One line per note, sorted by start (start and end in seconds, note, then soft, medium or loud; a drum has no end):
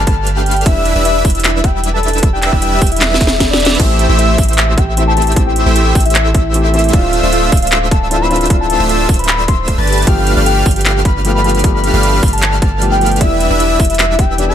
0.00 0.64 G1 medium
0.00 0.64 A3 medium
0.00 0.64 D4 medium
0.00 0.64 G4 medium
0.00 0.64 B4 medium
0.00 0.64 F5 medium
0.00 0.64 F6 medium
0.07 0.30 A5 loud
0.07 kick loud
0.07 closed hi-hat medium
0.27 closed hi-hat medium
0.37 0.60 G5 loud
0.46 closed hi-hat medium
0.51 closed hi-hat medium
0.56 closed hi-hat soft
0.61 closed hi-hat medium
0.66 0.93 G3 medium
0.66 0.93 D4 medium
0.66 0.93 E4 medium
0.66 0.93 B4 medium
0.66 0.93 E5 medium
0.66 0.97 E5 loud
0.66 0.93 E6 medium
0.66 kick loud
0.66 closed hi-hat medium
0.85 closed hi-hat medium
0.96 1.23 E1 loud
0.96 1.23 G3 medium
0.96 1.23 D4 medium
0.96 1.23 E4 medium
0.96 1.23 B4 medium
0.96 1.23 E5 loud
0.96 1.23 E6 loud
1.05 1.28 E5 loud
1.05 closed hi-hat medium
1.25 2.51 E1 medium
1.25 2.50 G3 medium
1.25 2.50 D4 medium
1.25 2.50 E4 medium
1.25 2.50 B4 medium
1.25 2.50 E5 medium
1.25 2.50 E6 medium
1.25 kick loud
1.25 open hi-hat medium
1.30 closed hi-hat medium
1.35 1.66 E5 loud
1.35 closed hi-hat soft
1.40 closed hi-hat medium
1.44 clap loud
1.44 closed hi-hat medium
1.64 1.87 G5 loud
1.64 kick loud
1.64 closed hi-hat medium
1.84 closed hi-hat medium
1.94 2.24 A5 loud
2.03 closed hi-hat soft
2.08 closed hi-hat medium
2.13 closed hi-hat soft
2.18 closed hi-hat medium
2.23 kick loud
2.23 closed hi-hat medium
2.33 2.56 G5 loud
2.42 clap medium
2.42 closed hi-hat medium
2.53 2.80 E1 loud
2.53 2.79 G3 loud
2.53 2.79 D4 medium
2.53 2.79 E4 medium
2.53 2.79 B4 medium
2.53 2.79 E5 loud
2.53 2.79 E6 loud
2.53 kick medium
2.62 2.85 G5 medium
2.62 closed hi-hat medium
2.82 3.77 G3 medium
2.82 3.77 D4 medium
2.82 3.77 E4 medium
2.82 3.77 B4 medium
2.82 3.77 E5 medium
2.82 3.77 E6 medium
2.82 kick loud
2.82 open hi-hat loud
2.87 closed hi-hat medium
2.92 3.14 E5 loud
2.92 closed hi-hat medium
2.96 closed hi-hat medium
3.01 snare medium
3.01 clap loud
3.01 closed hi-hat medium
3.01 reverse cymbal medium
3.14 snare medium
3.21 3.44 E5 loud
3.21 kick loud
3.21 closed hi-hat medium
3.27 snare medium
3.40 kick medium
3.40 snare medium
3.40 closed hi-hat medium
3.51 3.81 D5 loud
3.51 snare loud
3.60 closed hi-hat soft
3.65 snare loud
3.65 closed hi-hat medium
3.70 closed hi-hat soft
3.75 4.94 E3 medium
3.75 4.95 A3 medium
3.75 closed hi-hat medium
3.80 4.07 A1 medium
3.80 4.07 A3 medium
3.80 4.95 C4 medium
3.80 4.07 E4 medium
3.80 4.07 G4 medium
3.80 4.96 G4 medium
3.80 4.07 C5 medium
3.80 4.10 E5 loud
3.80 4.07 E5 medium
3.80 4.07 E6 medium
3.80 kick loud
3.80 closed hi-hat medium
3.80 crash medium
3.99 closed hi-hat medium
4.09 4.37 A1 loud
4.09 4.36 A3 loud
4.09 4.36 E4 medium
4.09 4.36 G4 medium
4.09 4.36 C5 medium
4.09 4.36 E5 loud
4.09 4.36 E6 loud
4.19 4.42 E5 loud
4.19 closed hi-hat medium
4.38 5.64 A3 medium
4.38 5.64 E4 medium
4.38 5.64 G4 medium
4.38 5.64 C5 medium
4.38 5.64 E5 medium
4.38 5.64 E6 medium
4.38 kick loud
4.38 open hi-hat loud
4.43 closed hi-hat medium
4.49 4.79 E5 loud
4.49 closed hi-hat medium
4.53 closed hi-hat medium
4.58 clap loud
4.58 closed hi-hat medium
4.78 5.00 G5 loud
4.78 kick loud
4.78 closed hi-hat medium
4.96 5.14 E3 medium
4.96 5.14 A3 medium
4.96 5.15 C4 medium
4.96 5.15 G4 medium
4.96 closed hi-hat medium
5.08 5.37 A5 loud
5.16 5.29 E3 medium
5.16 5.29 A3 medium
5.16 5.30 C4 medium
5.16 5.30 G4 loud
5.16 closed hi-hat medium
5.22 closed hi-hat medium
5.27 closed hi-hat medium
5.32 6.51 E3 medium
5.32 6.52 A3 medium
5.32 closed hi-hat medium
5.36 6.52 C4 medium
5.36 6.53 G4 loud
5.36 kick loud
5.36 closed hi-hat medium
5.47 5.69 G5 loud
5.56 closed hi-hat medium
5.66 5.93 A1 loud
5.66 5.93 A3 medium
5.66 5.93 E4 medium
5.66 5.93 G4 medium
5.66 5.93 C5 medium
5.66 5.93 E5 loud
5.66 5.93 E6 loud
5.76 5.99 G5 loud
5.76 closed hi-hat medium
5.95 6.91 A3 medium
5.95 6.91 E4 medium
5.95 6.91 G4 medium
5.95 6.91 C5 medium
5.95 6.91 E5 medium
5.95 6.91 E6 medium
5.95 kick loud
5.95 open hi-hat medium
6.00 closed hi-hat medium
6.06 6.28 E5 medium
6.06 closed hi-hat medium
6.10 closed hi-hat medium
6.15 clap loud
6.15 closed hi-hat medium
6.35 6.57 E5 loud
6.35 kick loud
6.35 closed hi-hat medium
6.53 6.71 E3 medium
6.53 6.71 A3 medium
6.53 6.72 C4 medium
6.53 6.72 G4 medium
6.53 closed hi-hat medium
6.64 6.87 E5 loud
6.73 6.86 E3 medium
6.73 6.86 A3 medium
6.73 6.87 C4 medium
6.73 6.87 G4 loud
6.73 closed hi-hat medium
6.79 closed hi-hat medium
6.84 closed hi-hat medium
6.89 closed hi-hat medium
6.93 7.21 A3 medium
6.93 8.08 C4 medium
6.93 7.21 D4 medium
6.93 8.09 D4 medium
6.93 7.21 F4 medium
6.93 8.10 F4 medium
6.93 7.21 C5 medium
6.93 7.21 E5 medium
6.93 7.24 F5 loud
6.93 7.21 E6 medium
6.93 kick loud
6.93 closed hi-hat medium
7.13 closed hi-hat medium
7.23 7.50 D1 loud
7.23 7.50 A3 loud
7.23 7.50 D4 medium
7.23 7.50 F4 medium
7.23 7.50 C5 medium
7.23 7.50 E5 loud
7.23 7.50 E6 loud
7.33 7.55 F5 loud
7.33 closed hi-hat medium
7.52 8.78 D1 medium
7.52 8.78 A3 medium
7.52 8.78 D4 medium
7.52 8.78 F4 medium
7.52 8.78 C5 medium
7.52 8.78 E5 medium
7.52 8.78 E6 medium
7.52 kick loud
7.52 open hi-hat medium
7.57 closed hi-hat medium
7.62 7.85 F5 loud
7.62 closed hi-hat medium
7.67 closed hi-hat medium
7.72 clap loud
7.72 closed hi-hat medium
7.91 8.23 A5 loud
7.91 kick loud
7.91 closed hi-hat medium
8.10 8.28 E3 medium
8.10 8.28 C4 medium
8.10 8.28 D4 medium
8.10 8.29 F4 medium
8.10 closed hi-hat medium
8.21 8.51 B5 loud
8.30 8.43 E3 medium
8.30 8.43 C4 medium
8.30 8.43 D4 medium
8.30 8.44 F4 loud
8.30 closed hi-hat medium
8.36 closed hi-hat medium
8.41 closed hi-hat medium
8.46 9.65 C4 medium
8.46 closed hi-hat medium
8.50 9.66 D4 medium
8.50 9.67 F4 medium
8.50 kick loud
8.50 closed hi-hat medium
8.61 8.83 A5 loud
8.70 closed hi-hat medium
8.80 9.07 D1 medium
8.80 9.07 A3 loud
8.80 9.07 D4 medium
8.80 9.07 F4 medium
8.80 9.07 C5 medium
8.80 9.07 E5 loud
8.80 9.07 E6 loud
8.89 9.12 A5 medium
8.89 closed hi-hat medium
9.09 9.76 D1 loud
9.09 9.76 A3 medium
9.09 9.76 D4 medium
9.09 9.76 F4 medium
9.09 9.76 C5 medium
9.09 9.76 E5 medium
9.09 9.76 E6 medium
9.09 kick loud
9.09 open hi-hat medium
9.14 closed hi-hat medium
9.19 9.42 B5 medium
9.19 closed hi-hat medium
9.24 closed hi-hat medium
9.29 clap loud
9.29 closed hi-hat medium
9.48 9.71 C6 loud
9.48 kick loud
9.48 closed hi-hat medium
9.68 kick medium
9.68 closed hi-hat medium
9.78 10.05 G1 medium
9.78 10.05 A3 medium
9.78 10.05 D4 medium
9.78 10.05 G4 medium
9.78 10.05 B4 medium
9.78 10.05 A5 medium
9.78 10.01 B5 loud
9.78 10.05 A6 medium
9.87 closed hi-hat medium
9.93 closed hi-hat medium
9.98 closed hi-hat soft
10.02 11.21 F3 medium
10.02 closed hi-hat medium
10.06 11.22 A3 medium
10.06 10.34 A3 medium
10.06 11.23 B3 medium
10.06 10.34 D4 medium
10.06 10.34 G4 medium
10.06 11.23 G4 medium
10.06 10.34 B4 medium
10.06 10.34 F5 medium
10.06 10.38 G5 loud
10.06 10.35 F6 medium
10.06 kick loud
10.06 closed hi-hat medium
10.27 closed hi-hat medium
10.37 10.64 G1 loud
10.37 10.64 A3 medium
10.37 10.64 D4 medium
10.37 10.64 G4 medium
10.37 10.64 B4 medium
10.37 10.64 F5 loud
10.37 10.64 F6 loud
10.46 10.69 G5 medium
10.46 closed hi-hat medium
10.66 11.92 G1 loud
10.66 11.91 A3 medium
10.66 11.91 D4 medium
10.66 11.91 G4 medium
10.66 11.91 B4 medium
10.66 11.91 F5 medium
10.66 11.91 F6 medium
10.66 kick loud
10.66 open hi-hat medium
10.71 closed hi-hat medium
10.76 10.99 G5 medium
10.76 closed hi-hat soft
10.81 closed hi-hat medium
10.85 clap loud
10.85 closed hi-hat medium
11.05 11.28 B5 loud
11.05 kick loud
11.05 closed hi-hat medium
11.24 11.42 F3 medium
11.24 11.42 A3 medium
11.24 11.42 B3 medium
11.24 11.43 G4 medium
11.24 closed hi-hat medium
11.35 11.65 B5 loud
11.43 11.57 F3 medium
11.43 11.57 A3 medium
11.43 11.57 B3 medium
11.43 11.58 G4 medium
11.43 closed hi-hat soft
11.49 closed hi-hat medium
11.55 closed hi-hat soft
11.59 12.78 F3 medium
11.59 12.79 A3 medium
11.59 closed hi-hat medium
11.64 12.80 B3 medium
11.64 12.80 G4 medium
11.64 kick loud
11.64 closed hi-hat medium
11.74 11.97 B5 loud
11.84 closed hi-hat medium
11.94 12.21 G1 loud
11.94 12.21 A3 loud
11.94 12.21 D4 medium
11.94 12.21 G4 medium
11.94 12.21 B4 medium
11.94 12.21 F5 loud
11.94 12.21 F6 loud
12.03 12.26 B5 medium
12.03 closed hi-hat medium
12.23 13.19 A3 medium
12.23 13.19 D4 medium
12.23 13.19 G4 medium
12.23 13.19 B4 medium
12.23 13.19 F5 medium
12.23 13.19 F6 medium
12.23 kick loud
12.23 open hi-hat medium
12.28 closed hi-hat medium
12.33 12.56 A5 medium
12.33 closed hi-hat soft
12.38 closed hi-hat medium
12.42 clap loud
12.42 closed hi-hat medium
12.62 12.85 A5 loud
12.62 kick loud
12.62 closed hi-hat medium
12.81 12.98 F3 medium
12.81 12.99 A3 medium
12.81 12.99 B3 medium
12.81 12.99 G4 medium
12.81 closed hi-hat medium
12.92 13.14 G5 loud
13.00 13.13 F3 medium
13.00 13.14 A3 medium
13.00 13.14 B3 medium
13.00 13.14 G4 loud
13.00 closed hi-hat soft
13.06 closed hi-hat medium
13.11 closed hi-hat soft
13.16 14.35 E3 medium
13.16 14.36 B3 medium
13.16 closed hi-hat medium
13.21 13.48 G3 medium
13.21 13.48 D4 medium
13.21 14.36 D4 medium
13.21 13.48 E4 medium
13.21 14.37 G4 medium
13.21 13.48 B4 medium
13.21 13.48 E5 medium
13.21 13.52 E5 loud
13.21 13.48 E6 medium
13.21 kick loud
13.21 closed hi-hat medium
13.40 closed hi-hat medium
13.50 13.78 E1 medium
13.50 13.77 G3 loud
13.50 13.77 D4 medium
13.50 13.77 E4 medium
13.50 13.77 B4 medium
13.50 13.77 E5 loud
13.50 13.77 E6 loud
13.60 13.83 E5 medium
13.60 closed hi-hat medium
13.79 14.54 G3 medium
13.79 14.54 D4 medium
13.79 14.54 E4 medium
13.79 14.54 B4 medium
13.79 14.54 E5 medium
13.79 14.54 E6 medium
13.79 kick loud
13.79 open hi-hat loud
13.85 closed hi-hat medium
13.90 14.20 E5 medium
13.90 closed hi-hat medium
13.95 closed hi-hat medium
13.99 clap loud
13.99 closed hi-hat medium
14.19 14.50 G5 loud
14.19 kick loud
14.19 closed hi-hat medium
14.37 14.54 E3 medium
14.37 14.54 B3 medium
14.37 14.54 D4 medium
14.37 14.54 G4 medium
14.37 closed hi-hat medium
14.49 14.54 A5 loud